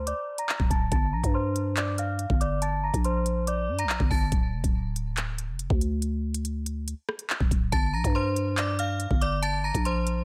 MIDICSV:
0, 0, Header, 1, 4, 480
1, 0, Start_track
1, 0, Tempo, 425532
1, 1033, Time_signature, 4, 2, 24, 8
1, 11551, End_track
2, 0, Start_track
2, 0, Title_t, "Synth bell"
2, 0, Program_c, 0, 98
2, 76, Note_on_c, 0, 86, 81
2, 84, Note_on_c, 0, 74, 59
2, 413, Note_off_c, 0, 86, 0
2, 417, Note_off_c, 0, 74, 0
2, 435, Note_on_c, 0, 82, 76
2, 445, Note_on_c, 0, 94, 63
2, 773, Note_off_c, 0, 82, 0
2, 778, Note_off_c, 0, 94, 0
2, 794, Note_on_c, 0, 81, 79
2, 803, Note_on_c, 0, 93, 66
2, 993, Note_off_c, 0, 81, 0
2, 999, Note_off_c, 0, 93, 0
2, 1034, Note_on_c, 0, 81, 100
2, 1044, Note_on_c, 0, 93, 89
2, 1233, Note_off_c, 0, 81, 0
2, 1239, Note_off_c, 0, 93, 0
2, 1274, Note_on_c, 0, 82, 73
2, 1284, Note_on_c, 0, 94, 59
2, 1474, Note_off_c, 0, 82, 0
2, 1479, Note_off_c, 0, 94, 0
2, 1513, Note_on_c, 0, 84, 87
2, 1522, Note_on_c, 0, 72, 68
2, 1964, Note_off_c, 0, 84, 0
2, 1969, Note_off_c, 0, 72, 0
2, 1993, Note_on_c, 0, 86, 76
2, 2002, Note_on_c, 0, 74, 61
2, 2193, Note_off_c, 0, 86, 0
2, 2198, Note_off_c, 0, 74, 0
2, 2236, Note_on_c, 0, 89, 82
2, 2245, Note_on_c, 0, 77, 68
2, 2686, Note_off_c, 0, 89, 0
2, 2691, Note_off_c, 0, 77, 0
2, 2713, Note_on_c, 0, 86, 84
2, 2722, Note_on_c, 0, 74, 66
2, 2913, Note_off_c, 0, 86, 0
2, 2918, Note_off_c, 0, 74, 0
2, 2955, Note_on_c, 0, 81, 107
2, 2963, Note_on_c, 0, 93, 89
2, 3154, Note_off_c, 0, 81, 0
2, 3159, Note_off_c, 0, 93, 0
2, 3198, Note_on_c, 0, 82, 85
2, 3207, Note_on_c, 0, 94, 68
2, 3396, Note_off_c, 0, 82, 0
2, 3401, Note_off_c, 0, 94, 0
2, 3435, Note_on_c, 0, 84, 83
2, 3443, Note_on_c, 0, 72, 60
2, 3885, Note_off_c, 0, 84, 0
2, 3890, Note_off_c, 0, 72, 0
2, 3917, Note_on_c, 0, 86, 81
2, 3925, Note_on_c, 0, 74, 64
2, 4254, Note_off_c, 0, 86, 0
2, 4258, Note_off_c, 0, 74, 0
2, 4273, Note_on_c, 0, 82, 80
2, 4282, Note_on_c, 0, 94, 59
2, 4611, Note_off_c, 0, 82, 0
2, 4616, Note_off_c, 0, 94, 0
2, 4631, Note_on_c, 0, 81, 86
2, 4640, Note_on_c, 0, 93, 58
2, 4832, Note_off_c, 0, 81, 0
2, 4837, Note_off_c, 0, 93, 0
2, 8711, Note_on_c, 0, 81, 98
2, 8720, Note_on_c, 0, 93, 91
2, 8912, Note_off_c, 0, 81, 0
2, 8917, Note_off_c, 0, 93, 0
2, 8951, Note_on_c, 0, 82, 73
2, 8961, Note_on_c, 0, 94, 60
2, 9151, Note_off_c, 0, 82, 0
2, 9157, Note_off_c, 0, 94, 0
2, 9193, Note_on_c, 0, 84, 86
2, 9201, Note_on_c, 0, 72, 66
2, 9644, Note_off_c, 0, 84, 0
2, 9649, Note_off_c, 0, 72, 0
2, 9673, Note_on_c, 0, 86, 78
2, 9682, Note_on_c, 0, 74, 60
2, 9873, Note_off_c, 0, 86, 0
2, 9878, Note_off_c, 0, 74, 0
2, 9914, Note_on_c, 0, 89, 82
2, 9922, Note_on_c, 0, 77, 66
2, 10365, Note_off_c, 0, 89, 0
2, 10369, Note_off_c, 0, 77, 0
2, 10393, Note_on_c, 0, 86, 90
2, 10403, Note_on_c, 0, 74, 69
2, 10593, Note_off_c, 0, 86, 0
2, 10598, Note_off_c, 0, 74, 0
2, 10631, Note_on_c, 0, 81, 108
2, 10641, Note_on_c, 0, 93, 85
2, 10832, Note_off_c, 0, 81, 0
2, 10837, Note_off_c, 0, 93, 0
2, 10875, Note_on_c, 0, 82, 83
2, 10884, Note_on_c, 0, 94, 69
2, 11074, Note_off_c, 0, 82, 0
2, 11079, Note_off_c, 0, 94, 0
2, 11114, Note_on_c, 0, 84, 83
2, 11124, Note_on_c, 0, 72, 61
2, 11551, Note_off_c, 0, 72, 0
2, 11551, Note_off_c, 0, 84, 0
2, 11551, End_track
3, 0, Start_track
3, 0, Title_t, "808-style bass"
3, 0, Program_c, 1, 38
3, 0, Note_on_c, 1, 38, 100
3, 148, Note_off_c, 1, 38, 0
3, 674, Note_on_c, 1, 26, 101
3, 789, Note_off_c, 1, 26, 0
3, 795, Note_on_c, 1, 26, 102
3, 1025, Note_off_c, 1, 26, 0
3, 1035, Note_on_c, 1, 31, 107
3, 1273, Note_on_c, 1, 34, 96
3, 1290, Note_off_c, 1, 31, 0
3, 1387, Note_off_c, 1, 34, 0
3, 1393, Note_on_c, 1, 43, 101
3, 2548, Note_off_c, 1, 43, 0
3, 2593, Note_on_c, 1, 31, 104
3, 3285, Note_off_c, 1, 31, 0
3, 3313, Note_on_c, 1, 34, 108
3, 4154, Note_on_c, 1, 43, 98
3, 4171, Note_off_c, 1, 34, 0
3, 4333, Note_on_c, 1, 34, 101
3, 4350, Note_off_c, 1, 43, 0
3, 4504, Note_off_c, 1, 34, 0
3, 4512, Note_on_c, 1, 31, 99
3, 4628, Note_off_c, 1, 31, 0
3, 4633, Note_on_c, 1, 31, 103
3, 4864, Note_off_c, 1, 31, 0
3, 4873, Note_on_c, 1, 26, 104
3, 5113, Note_on_c, 1, 29, 96
3, 5129, Note_off_c, 1, 26, 0
3, 5227, Note_off_c, 1, 29, 0
3, 5232, Note_on_c, 1, 26, 106
3, 6193, Note_on_c, 1, 29, 102
3, 6210, Note_off_c, 1, 26, 0
3, 6421, Note_off_c, 1, 29, 0
3, 6432, Note_on_c, 1, 38, 103
3, 7828, Note_off_c, 1, 38, 0
3, 8352, Note_on_c, 1, 26, 101
3, 8468, Note_off_c, 1, 26, 0
3, 8474, Note_on_c, 1, 26, 103
3, 8704, Note_off_c, 1, 26, 0
3, 8713, Note_on_c, 1, 31, 105
3, 8953, Note_on_c, 1, 34, 96
3, 8970, Note_off_c, 1, 31, 0
3, 9067, Note_off_c, 1, 34, 0
3, 9072, Note_on_c, 1, 43, 103
3, 10228, Note_off_c, 1, 43, 0
3, 10272, Note_on_c, 1, 31, 105
3, 10964, Note_off_c, 1, 31, 0
3, 10993, Note_on_c, 1, 34, 104
3, 11551, Note_off_c, 1, 34, 0
3, 11551, End_track
4, 0, Start_track
4, 0, Title_t, "Drums"
4, 78, Note_on_c, 9, 42, 78
4, 191, Note_off_c, 9, 42, 0
4, 431, Note_on_c, 9, 42, 77
4, 544, Note_off_c, 9, 42, 0
4, 554, Note_on_c, 9, 39, 117
4, 667, Note_off_c, 9, 39, 0
4, 674, Note_on_c, 9, 36, 102
4, 786, Note_off_c, 9, 36, 0
4, 795, Note_on_c, 9, 36, 98
4, 799, Note_on_c, 9, 42, 75
4, 908, Note_off_c, 9, 36, 0
4, 911, Note_off_c, 9, 42, 0
4, 1034, Note_on_c, 9, 42, 81
4, 1035, Note_on_c, 9, 36, 120
4, 1147, Note_off_c, 9, 36, 0
4, 1147, Note_off_c, 9, 42, 0
4, 1393, Note_on_c, 9, 36, 90
4, 1397, Note_on_c, 9, 42, 99
4, 1506, Note_off_c, 9, 36, 0
4, 1510, Note_off_c, 9, 42, 0
4, 1757, Note_on_c, 9, 42, 80
4, 1869, Note_off_c, 9, 42, 0
4, 1994, Note_on_c, 9, 39, 108
4, 1997, Note_on_c, 9, 42, 76
4, 2106, Note_off_c, 9, 39, 0
4, 2110, Note_off_c, 9, 42, 0
4, 2235, Note_on_c, 9, 42, 73
4, 2348, Note_off_c, 9, 42, 0
4, 2470, Note_on_c, 9, 42, 67
4, 2583, Note_off_c, 9, 42, 0
4, 2593, Note_on_c, 9, 36, 101
4, 2706, Note_off_c, 9, 36, 0
4, 2718, Note_on_c, 9, 42, 77
4, 2831, Note_off_c, 9, 42, 0
4, 2954, Note_on_c, 9, 42, 80
4, 3066, Note_off_c, 9, 42, 0
4, 3313, Note_on_c, 9, 36, 90
4, 3318, Note_on_c, 9, 42, 104
4, 3426, Note_off_c, 9, 36, 0
4, 3431, Note_off_c, 9, 42, 0
4, 3435, Note_on_c, 9, 42, 86
4, 3547, Note_off_c, 9, 42, 0
4, 3676, Note_on_c, 9, 42, 79
4, 3789, Note_off_c, 9, 42, 0
4, 3917, Note_on_c, 9, 42, 78
4, 4030, Note_off_c, 9, 42, 0
4, 4270, Note_on_c, 9, 42, 74
4, 4383, Note_off_c, 9, 42, 0
4, 4392, Note_on_c, 9, 39, 116
4, 4505, Note_off_c, 9, 39, 0
4, 4512, Note_on_c, 9, 36, 104
4, 4625, Note_off_c, 9, 36, 0
4, 4634, Note_on_c, 9, 36, 98
4, 4637, Note_on_c, 9, 46, 59
4, 4747, Note_off_c, 9, 36, 0
4, 4750, Note_off_c, 9, 46, 0
4, 4872, Note_on_c, 9, 42, 78
4, 4873, Note_on_c, 9, 36, 121
4, 4985, Note_off_c, 9, 42, 0
4, 4986, Note_off_c, 9, 36, 0
4, 5232, Note_on_c, 9, 36, 89
4, 5236, Note_on_c, 9, 42, 99
4, 5345, Note_off_c, 9, 36, 0
4, 5348, Note_off_c, 9, 42, 0
4, 5596, Note_on_c, 9, 42, 77
4, 5708, Note_off_c, 9, 42, 0
4, 5833, Note_on_c, 9, 39, 110
4, 5836, Note_on_c, 9, 42, 78
4, 5945, Note_off_c, 9, 39, 0
4, 5949, Note_off_c, 9, 42, 0
4, 6073, Note_on_c, 9, 42, 75
4, 6186, Note_off_c, 9, 42, 0
4, 6308, Note_on_c, 9, 42, 71
4, 6421, Note_off_c, 9, 42, 0
4, 6432, Note_on_c, 9, 36, 102
4, 6545, Note_off_c, 9, 36, 0
4, 6557, Note_on_c, 9, 42, 79
4, 6670, Note_off_c, 9, 42, 0
4, 6792, Note_on_c, 9, 42, 79
4, 6905, Note_off_c, 9, 42, 0
4, 7157, Note_on_c, 9, 42, 105
4, 7269, Note_off_c, 9, 42, 0
4, 7274, Note_on_c, 9, 42, 82
4, 7387, Note_off_c, 9, 42, 0
4, 7516, Note_on_c, 9, 42, 81
4, 7629, Note_off_c, 9, 42, 0
4, 7757, Note_on_c, 9, 42, 78
4, 7870, Note_off_c, 9, 42, 0
4, 7993, Note_on_c, 9, 37, 95
4, 8106, Note_off_c, 9, 37, 0
4, 8110, Note_on_c, 9, 42, 73
4, 8223, Note_off_c, 9, 42, 0
4, 8233, Note_on_c, 9, 39, 117
4, 8346, Note_off_c, 9, 39, 0
4, 8352, Note_on_c, 9, 36, 104
4, 8465, Note_off_c, 9, 36, 0
4, 8474, Note_on_c, 9, 36, 96
4, 8478, Note_on_c, 9, 42, 78
4, 8587, Note_off_c, 9, 36, 0
4, 8591, Note_off_c, 9, 42, 0
4, 8713, Note_on_c, 9, 36, 121
4, 8713, Note_on_c, 9, 42, 80
4, 8826, Note_off_c, 9, 36, 0
4, 8826, Note_off_c, 9, 42, 0
4, 9072, Note_on_c, 9, 36, 89
4, 9076, Note_on_c, 9, 42, 101
4, 9185, Note_off_c, 9, 36, 0
4, 9189, Note_off_c, 9, 42, 0
4, 9435, Note_on_c, 9, 42, 80
4, 9548, Note_off_c, 9, 42, 0
4, 9672, Note_on_c, 9, 39, 109
4, 9676, Note_on_c, 9, 42, 75
4, 9785, Note_off_c, 9, 39, 0
4, 9789, Note_off_c, 9, 42, 0
4, 9913, Note_on_c, 9, 42, 74
4, 10026, Note_off_c, 9, 42, 0
4, 10149, Note_on_c, 9, 42, 67
4, 10261, Note_off_c, 9, 42, 0
4, 10272, Note_on_c, 9, 36, 101
4, 10385, Note_off_c, 9, 36, 0
4, 10396, Note_on_c, 9, 42, 80
4, 10509, Note_off_c, 9, 42, 0
4, 10633, Note_on_c, 9, 42, 79
4, 10746, Note_off_c, 9, 42, 0
4, 10993, Note_on_c, 9, 36, 85
4, 10997, Note_on_c, 9, 42, 99
4, 11105, Note_off_c, 9, 36, 0
4, 11109, Note_off_c, 9, 42, 0
4, 11114, Note_on_c, 9, 42, 86
4, 11227, Note_off_c, 9, 42, 0
4, 11355, Note_on_c, 9, 42, 79
4, 11468, Note_off_c, 9, 42, 0
4, 11551, End_track
0, 0, End_of_file